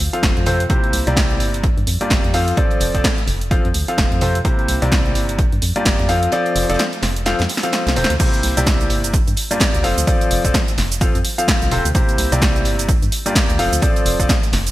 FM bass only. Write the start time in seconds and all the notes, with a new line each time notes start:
0.23 F1
0.37 F2
0.93 C2
1.07 C2
1.40 G1
1.77 G2
1.87 F2
2.10 G1
2.24 F2
2.81 F1
2.95 F1
3.28 F1
3.65 F2
3.74 D2
3.98 F1
4.12 F2
4.68 C2
4.82 C2
5.15 G1
5.53 G2
5.62 F2
5.85 G1
5.99 F2
6.56 F1
6.69 F1
7.03 F1
7.40 F2
7.87 C2
7.96 D1
8.10 D2
8.43 C2
8.57 C2
8.90 G1
9.27 G2
9.74 D2
9.84 F1
9.98 D2
10.31 F1
10.45 F1
10.78 F1
11.15 F2
11.62 C2
11.71 D1
11.85 D2
12.18 C2
12.32 C2
12.65 G1
13.02 G2
13.49 D2
13.59 F1
13.73 D2
14.06 F1
14.20 F1
14.53 F1